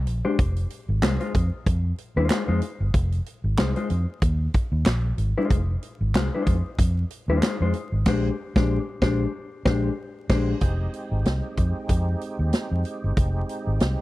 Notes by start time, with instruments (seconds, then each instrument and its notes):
0.07 fingered electric bass A#1, closed hi-hat
0.25 clean electric guitar G#3 D4 G4 C5
0.39 fingered electric bass F1, kick, closed hi-hat
0.56 closed hi-hat
0.70 closed hi-hat
0.89 fingered electric bass G#1
1.02 fingered electric bass C2, clean electric guitar G#3 D#4 F4 C5, snare, clap, closed hi-hat
1.20 clean electric guitar G#3 D#4 F4 C5, closed hi-hat
1.35 fingered electric bass F2, kick, closed hi-hat
1.66 fingered electric bass F2, kick, closed hi-hat
1.98 closed hi-hat
2.16 fingered electric bass D#2, clean electric guitar G#3 D#4 F4 C5
2.30 clean electric guitar G#3 D#4 F4 C5, snare, clap, closed hi-hat
2.48 fingered electric bass F2, clean electric guitar G#3 D#4 F4 C5
2.62 closed hi-hat
2.80 fingered electric bass G1
2.94 fingered electric bass F1, kick, closed hi-hat
3.12 closed hi-hat
3.26 closed hi-hat
3.44 fingered electric bass G#1
3.57 fingered electric bass C2, clean electric guitar G#3 D#4 F4 C5, snare, clap, closed hi-hat
3.76 clean electric guitar G#3 D#4 F4 C5, closed hi-hat
3.90 fingered electric bass F2, closed hi-hat
4.22 fingered electric bass D#2, kick, closed hi-hat
4.54 kick, closed hi-hat
4.72 fingered electric bass D#2
4.85 fingered electric bass A#1, snare, clap, closed hi-hat
5.18 fingered electric bass G#1, closed hi-hat
5.38 clean electric guitar G#3 D#4 F4 C5
5.50 fingered electric bass F1, kick, closed hi-hat
5.82 closed hi-hat
6.01 fingered electric bass G#1
6.14 fingered electric bass C2, clean electric guitar G#3 D#4 F4 C5, snare, clap, closed hi-hat
6.34 clean electric guitar G#3 D#4 F4 C5
6.46 fingered electric bass F2, kick, closed hi-hat
6.78 fingered electric bass F2, kick, closed hi-hat
7.10 closed hi-hat
7.28 fingered electric bass D#2, clean electric guitar G#3 D#4 F4 C5
7.42 clean electric guitar G#3 D#4, snare, clap, closed hi-hat
7.46 clean electric guitar F4 C5
7.60 fingered electric bass F2, clean electric guitar G#3 D#4 F4 C5
7.73 closed hi-hat
7.92 fingered electric bass G#1
8.06 fingered electric bass A#1, clean electric guitar G#3 D4 G4 C5, kick, snare, crash
8.56 fingered electric bass A#1, clean electric guitar G#3 D4 G4 C5, kick, snare
9.01 fingered electric bass A#1, clean electric guitar G#3 D4 G4 C5, kick, snare
9.65 fingered electric bass A#1, clean electric guitar G#3 D4 G4 C5, kick, snare
10.29 fingered electric bass A#1, clean electric guitar G#3 D4 G4 C5, kick, snare, crash
10.61 fingered electric bass F1, tonewheel organ G#3 C4 D#4 G4, kick, closed hi-hat
10.94 closed hi-hat
11.11 fingered electric bass G#1
11.25 fingered electric bass C2, snare, closed hi-hat
11.57 fingered electric bass F2, kick, closed hi-hat
11.89 fingered electric bass F2, kick, closed hi-hat
12.21 closed hi-hat
12.39 fingered electric bass D#2
12.53 snare, closed hi-hat
12.71 fingered electric bass F2
12.85 closed hi-hat
13.04 fingered electric bass G1
13.17 fingered electric bass F1, kick, closed hi-hat
13.49 closed hi-hat
13.67 fingered electric bass G#1
13.80 fingered electric bass C2, snare, closed hi-hat